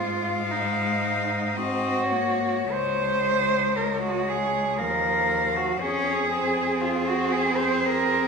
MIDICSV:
0, 0, Header, 1, 5, 480
1, 0, Start_track
1, 0, Key_signature, -5, "major"
1, 0, Tempo, 1060071
1, 709, Tempo, 1129944
1, 1189, Time_signature, 3, 2, 24, 8
1, 1189, Tempo, 1060071
1, 1669, Tempo, 1018676
1, 3799, End_track
2, 0, Start_track
2, 0, Title_t, "Cello"
2, 0, Program_c, 0, 42
2, 0, Note_on_c, 0, 77, 64
2, 704, Note_on_c, 0, 75, 60
2, 711, Note_off_c, 0, 77, 0
2, 940, Note_off_c, 0, 75, 0
2, 942, Note_on_c, 0, 73, 63
2, 1651, Note_off_c, 0, 73, 0
2, 1671, Note_on_c, 0, 73, 58
2, 2155, Note_on_c, 0, 77, 58
2, 2162, Note_off_c, 0, 73, 0
2, 2635, Note_on_c, 0, 68, 62
2, 2643, Note_off_c, 0, 77, 0
2, 3108, Note_off_c, 0, 68, 0
2, 3111, Note_on_c, 0, 68, 70
2, 3799, Note_off_c, 0, 68, 0
2, 3799, End_track
3, 0, Start_track
3, 0, Title_t, "Cello"
3, 0, Program_c, 1, 42
3, 0, Note_on_c, 1, 65, 93
3, 231, Note_on_c, 1, 63, 70
3, 238, Note_off_c, 1, 65, 0
3, 714, Note_on_c, 1, 66, 89
3, 720, Note_off_c, 1, 63, 0
3, 1196, Note_on_c, 1, 72, 96
3, 1203, Note_off_c, 1, 66, 0
3, 1672, Note_on_c, 1, 70, 74
3, 1679, Note_off_c, 1, 72, 0
3, 1793, Note_off_c, 1, 70, 0
3, 1796, Note_on_c, 1, 66, 79
3, 1920, Note_on_c, 1, 68, 82
3, 1927, Note_off_c, 1, 66, 0
3, 2159, Note_off_c, 1, 68, 0
3, 2162, Note_on_c, 1, 70, 91
3, 2521, Note_on_c, 1, 66, 77
3, 2528, Note_off_c, 1, 70, 0
3, 2638, Note_on_c, 1, 68, 88
3, 2645, Note_off_c, 1, 66, 0
3, 3111, Note_on_c, 1, 65, 80
3, 3118, Note_off_c, 1, 68, 0
3, 3231, Note_on_c, 1, 66, 83
3, 3238, Note_off_c, 1, 65, 0
3, 3349, Note_on_c, 1, 68, 80
3, 3356, Note_off_c, 1, 66, 0
3, 3465, Note_on_c, 1, 72, 88
3, 3472, Note_off_c, 1, 68, 0
3, 3601, Note_on_c, 1, 70, 94
3, 3608, Note_off_c, 1, 72, 0
3, 3799, Note_off_c, 1, 70, 0
3, 3799, End_track
4, 0, Start_track
4, 0, Title_t, "Cello"
4, 0, Program_c, 2, 42
4, 0, Note_on_c, 2, 56, 74
4, 705, Note_off_c, 2, 56, 0
4, 708, Note_on_c, 2, 60, 74
4, 942, Note_on_c, 2, 58, 71
4, 948, Note_off_c, 2, 60, 0
4, 1184, Note_off_c, 2, 58, 0
4, 1186, Note_on_c, 2, 56, 77
4, 2159, Note_on_c, 2, 53, 65
4, 2166, Note_off_c, 2, 56, 0
4, 2633, Note_off_c, 2, 53, 0
4, 2635, Note_on_c, 2, 61, 81
4, 2868, Note_off_c, 2, 61, 0
4, 2875, Note_on_c, 2, 60, 82
4, 3799, Note_off_c, 2, 60, 0
4, 3799, End_track
5, 0, Start_track
5, 0, Title_t, "Cello"
5, 0, Program_c, 3, 42
5, 0, Note_on_c, 3, 44, 66
5, 1189, Note_off_c, 3, 44, 0
5, 1191, Note_on_c, 3, 37, 64
5, 2161, Note_on_c, 3, 39, 64
5, 2168, Note_off_c, 3, 37, 0
5, 2634, Note_off_c, 3, 39, 0
5, 2637, Note_on_c, 3, 41, 68
5, 3799, Note_off_c, 3, 41, 0
5, 3799, End_track
0, 0, End_of_file